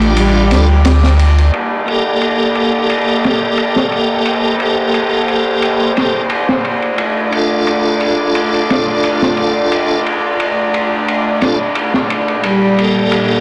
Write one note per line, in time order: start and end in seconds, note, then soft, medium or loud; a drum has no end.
0.00 0.53 A1 medium
0.00 0.12 A3 loud
0.00 0.47 D4 medium
0.00 0.48 F4 medium
0.00 1.50 F4 medium
0.00 0.49 G4 loud
0.00 1.49 D5 medium
0.00 1.51 G5 medium
0.00 1.49 D6 medium
0.00 ride soft
0.17 0.79 G3 loud
0.17 ride medium
0.50 1.50 D2 medium
0.50 0.68 D4 medium
0.50 0.68 F4 medium
0.50 0.69 A4 loud
0.50 snare soft
0.50 ride medium
0.85 snare loud
0.85 ride medium
1.04 snare medium
1.19 ride medium
1.38 ride soft
1.53 6.95 A#3 medium
1.53 6.95 G4 medium
1.53 6.94 A4 medium
1.53 4.23 D5 medium
1.53 ride medium
1.86 4.55 A#3 medium
1.86 4.57 G4 medium
1.86 ride medium
1.90 4.58 A4 loud
2.21 ride medium
2.55 ride medium
2.90 ride medium
3.08 ride soft
3.24 snare soft
3.24 ride soft
3.58 ride medium
3.76 snare soft
3.92 ride medium
4.25 6.96 C5 medium
4.25 ride medium
4.59 5.92 A#3 medium
4.59 5.93 G4 medium
4.59 ride medium
4.63 5.94 A4 medium
4.94 ride medium
5.28 ride soft
5.62 ride medium
5.95 6.22 A#3 medium
5.95 6.23 G4 medium
5.95 6.23 A4 medium
5.95 snare soft
5.95 ride medium
6.30 ride medium
6.49 snare soft
6.65 ride medium
6.82 ride soft
6.98 12.41 A3 medium
6.98 13.40 D4 medium
6.98 12.40 F4 medium
6.98 12.40 D5 medium
6.98 ride medium
7.31 10.01 D4 medium
7.31 10.02 F4 medium
7.31 ride medium
7.36 10.03 A4 loud
7.67 ride medium
8.01 ride medium
8.35 ride medium
8.54 ride soft
8.70 snare soft
8.70 ride medium
9.04 ride medium
9.23 snare soft
9.37 ride medium
9.72 ride medium
10.06 ride medium
10.40 ride medium
10.74 ride medium
11.08 ride medium
11.41 11.59 D4 medium
11.41 11.59 F4 medium
11.41 11.60 A4 medium
11.41 snare soft
11.41 ride medium
11.75 ride medium
11.94 snare soft
12.10 ride medium
12.28 ride soft
12.43 13.40 A#2 medium
12.43 13.40 G3 medium
12.43 13.06 G3 medium
12.43 13.40 A4 medium
12.43 ride medium
12.77 13.40 A#3 medium
12.77 13.40 G4 medium
12.77 ride medium
12.81 13.40 A4 medium
13.12 ride medium